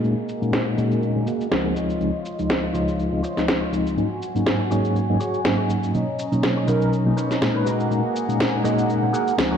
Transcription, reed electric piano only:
0.04 A#2 G#3 A#3 C#4 D#4
0.41 A#2 G#3 A#3 C#4 D#4
0.77 A#2 G#3 A#3 C#4 D#4
1.15 A#2 G#3 A#3 C#4 D#4
1.51 C#2 F3 G#3 C4 D#4
2.00 C#2 F3 G#3 C4 D#4
2.38 C#2 F3 G#3 D#4
2.74 C#2 F3 G#3 D#4
3.12 C#2 F3 G#3 C4 D#4
3.36 C#2 F3 G#3 D#4
3.72 C#2 F3 G#3 C4 D#4
3.97 G#2 F#3 A#3 C#4 D#4
4.35 G#2 F#3 A#3 C#4 D#4
4.71 G#2 F#3 A#3 C#4 D#4
5.09 G#2 F#3 A#3 C#4 D#4
5.45 G#2 F#3 A#3 C#4 D#4
5.94 B2 F#3 A#3 C#4 D#4
6.32 B2 F#3 A#3 C#4 D#4
6.67 B2 F#3 C#4 D#4
7.05 B2 F#3 A#3 C#4 D#4
7.41 A#2 G#3 A#3 C#4 D#4
7.90 A#2 G#3 A#3 C#4 D#4
8.28 A#2 G#3 A#3 C#4 D#4
8.64 A#2 G#3 A#3 C#4 D#4
9.02 A#2 G#3 A#3 C#4 D#4
9.37 C#2 F3 G#3 C4 D#4

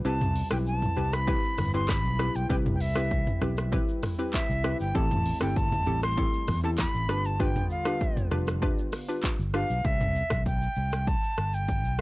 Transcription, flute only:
0.05 A5
0.52 G5
0.67 A5
1.13 B5
1.74 C6
1.89 B5
2.36 G5
2.50 G5
2.74 G5
2.81 E5
4.34 E5
4.81 G5
4.96 A5
5.42 G5
5.57 A5
6.03 C6
6.64 A5
6.79 B5
7.26 A5
7.40 G5
7.71 F5
9.55 F5
9.85 E5
10.46 G5
11.08 A5
11.54 G5

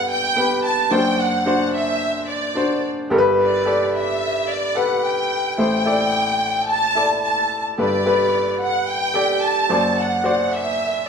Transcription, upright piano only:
Already playing: G1 G2 B3 G4 A4
0.36 B3 G4 B4
0.91 F#1 F#2 D4 F#4 C5
1.46 D4 F#4 C5
2.55 D4 F#4 C5
3.10 G1 G2 G4 A4 A#4
3.18 B4
3.65 G4 A4 D5
4.75 G4 A4 B4
5.58 A1 A2 E4 A4 C5
5.85 E4 A4 D5
6.95 E4 A4 D5
7.78 G1 G2 G4 A4 B4
8.05 G4 A4 B4
9.14 G4 A4 D5
9.69 F#1 F#2 F#4 C5 D5
10.24 F#4 C5 D5

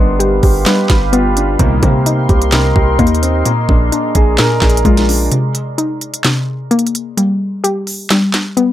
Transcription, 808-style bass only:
Already playing: G1
0.43 G1
0.90 G1
1.59 C2
1.83 C3
2.29 C2
2.76 C2
2.99 D#2
3.69 A#1
4.15 A#1
4.62 A#1
4.85 A#1

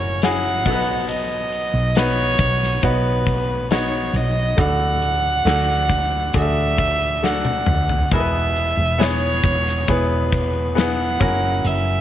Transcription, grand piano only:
Already playing: C#4 E4 F#4 A#4
0.23 C#4 E4 F#4 G#4
0.66 B2 F#3 B3 D#4 F#4 A4
0.74 B4
1.96 B3 D#4 F#4 B4
2.83 B3 D#4 F#4 C#5
3.71 B3 D#4 F#4 C#5
4.57 A2 A3 D4 F#4 A4
5.45 A3 D4 F#4 A4
6.34 A3 D4 F#4 G#4
6.42 A4
7.22 A3 D4 F#4 A4
8.12 B2 B3 E4 G#4 A#4
8.20 B4
8.98 B3 E4 G#4 C#5
9.89 B3 E4 G#4 C#5
10.75 B3 E4 G#4 B4
11.20 C#3 C#4 E4 F#4 A#4

